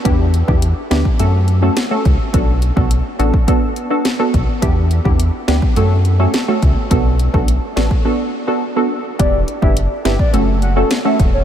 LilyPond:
<<
  \new Staff \with { instrumentName = "Soft synth lead" } { \time 4/4 \key b \minor \tempo 4 = 105 r1 | r1 | r1 | r1 |
d''8 r16 e''16 r8 e''16 d''16 r8 fis''16 r8 e''16 r16 cis''16 | }
  \new Staff \with { instrumentName = "Synth stab" } { \time 4/4 \key b \minor <b d' e' g'>8. <b d' e' g'>16 r8 <b d' e' g'>16 r16 <a cis' fis' a'>8. <a cis' fis' a'>16 r16 <a cis' fis' a'>16 r8 | <b d' fis' a'>8. <b d' fis' a'>16 r8 <b d' fis' a'>16 r16 <b d' fis' a'>8. <b d' fis' a'>16 r16 <b d' fis' a'>16 r8 | <b d' e' g'>8. <b d' e' g'>16 r8 <b d' e' g'>16 r16 <a cis' fis' a'>8. <a cis' fis' a'>16 r16 <a cis' fis' a'>16 r8 | <b d' fis' a'>8. <b d' fis' a'>16 r8 <b d' fis' a'>16 r16 <b d' fis' a'>8. <b d' fis' a'>16 r16 <b d' fis' a'>16 r8 |
<b d' e' g'>8. <b d' e' g'>16 r8 <b d' e' g'>16 r16 <a cis' fis' a'>8. <a cis' fis' a'>16 r16 <a cis' fis' a'>16 r8 | }
  \new Staff \with { instrumentName = "Analog synth bass" } { \clef bass \time 4/4 \key b \minor e,8. e,8 r16 d,16 r16 fis,4 r8 cis,16 r16 | b,,8. b,,8 r16 a,,16 r4. r16 b,,16 r16 | e,8. e,8 r16 d,16 r16 fis,4 r8 cis,16 r16 | b,,8. b,,8 r16 a,,16 r2 r16 |
e,,8 r16 fis,,8 r16 g,,16 r16 fis,,4 r8 e,,8 | }
  \new DrumStaff \with { instrumentName = "Drums" } \drummode { \time 4/4 <hh bd>8 hh16 bd16 hh8 <hh sn>16 bd16 hh8 hh8 <hh sn>8 <hh bd>8 | <hh bd>8 hh16 bd16 hh8 hh16 bd16 <hh bd>8 hh8 <hh sn>8 <hh bd>8 | <hh bd>8 hh16 bd16 hh8 <hh sn>16 bd16 hh8 hh8 <hh sn>8 <hh bd>8 | <hh bd>8 hh16 bd16 hh8 <hh sn>16 bd16 r4 r4 |
<hh bd>8 hh16 bd16 hh8 <hh sn>16 bd16 hh8 hh8 <hh sn>8 <hh bd>8 | }
>>